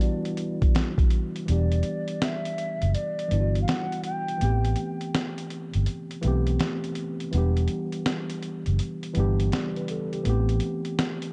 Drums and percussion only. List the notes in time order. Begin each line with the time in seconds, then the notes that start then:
0.01 closed hi-hat
0.25 closed hi-hat
0.37 closed hi-hat
0.62 kick, closed hi-hat
0.75 snare, closed hi-hat
0.98 kick, closed hi-hat
1.10 closed hi-hat
1.36 closed hi-hat
1.48 closed hi-hat
1.72 closed hi-hat
1.83 closed hi-hat
2.08 closed hi-hat
2.22 snare, closed hi-hat
2.45 closed hi-hat
2.58 closed hi-hat
2.82 closed hi-hat
2.95 closed hi-hat
3.19 closed hi-hat
3.31 closed hi-hat
3.55 closed hi-hat
3.68 snare, closed hi-hat
3.92 closed hi-hat
4.04 closed hi-hat
4.28 closed hi-hat
4.41 closed hi-hat
4.65 closed hi-hat
4.76 closed hi-hat
5.01 closed hi-hat
5.15 snare, closed hi-hat
5.38 closed hi-hat
5.50 closed hi-hat
5.74 closed hi-hat
5.86 closed hi-hat
6.11 closed hi-hat
6.23 closed hi-hat
6.47 closed hi-hat
6.60 snare, closed hi-hat
6.84 closed hi-hat
6.95 closed hi-hat
7.20 closed hi-hat
7.33 closed hi-hat
7.57 closed hi-hat
7.68 closed hi-hat
7.92 closed hi-hat
8.06 snare, closed hi-hat
8.30 closed hi-hat
8.43 closed hi-hat
8.66 closed hi-hat
8.79 closed hi-hat
9.03 closed hi-hat
9.15 closed hi-hat
9.40 closed hi-hat
9.52 snare, closed hi-hat
9.76 closed hi-hat
9.88 closed hi-hat
10.13 closed hi-hat
10.25 closed hi-hat
10.49 closed hi-hat
10.60 closed hi-hat
10.85 closed hi-hat
10.99 snare, closed hi-hat
11.22 closed hi-hat